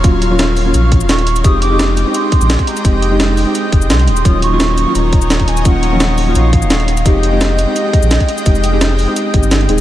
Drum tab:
HH |x-x-x-o-x-x-xxxx|x-x-x-x-x-x-xxxx|x-x-x-o-x-x-xxxx|x-x-x-x-x-x-xxxx|
SH |x---x-x-x--xx--x|x---x-x-x--xx--x|x---x-x-x--xx--x|x---x-x-x--xx--x|
SD |----o-------o---|----o-------o---|----o-------o---|----o-------o---|
BD |o---------o-----|o---------o--o--|o---------o-----|o---------o--o--|

HH |x-x-x-o-x-x-xxxx|x-x-x-x-x-x-xxxx|x-x-x-o-x-x-xxx-|
SH |x---x-x-x--xx--x|x---x-x-x--xx--x|xxx-x-x-x--xx---|
SD |----o-------o---|----o-------o---|----o-------o---|
BD |o---------o-----|o---------o--o--|o---------o-----|